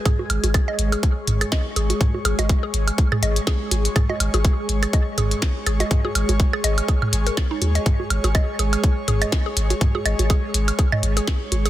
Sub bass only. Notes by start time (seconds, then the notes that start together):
0.30 G#1
0.44 G#1
0.79 G#1
1.27 G#1
1.76 G#1
2.25 G#1
2.39 G#1
2.74 G#1
3.23 G#1
3.71 G#1
4.20 G#1
4.34 G#1
4.69 G#1
5.18 G#1
5.66 G#1
6.15 G#1
6.29 G#1
6.64 G#1
7.13 G#1
7.62 D#2
8.10 G#1
8.24 G#1
8.59 G#1
9.08 G#1
9.57 G#1
10.06 G#1
10.19 G#1
10.54 G#1
11.03 G#1
11.52 G#1